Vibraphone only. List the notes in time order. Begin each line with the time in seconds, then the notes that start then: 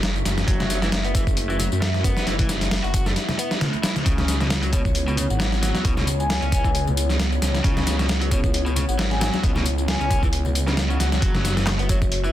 4.73 C#5
4.85 C#5
5.30 F#5
6.20 G#5
6.53 G#5
6.66 G#5
8.31 C#5
8.44 C#5
8.88 F#5
9.10 G#5
9.21 G#5
9.88 G#5
10.01 G#5
10.90 F#5
11.00 F#5
11.89 C#5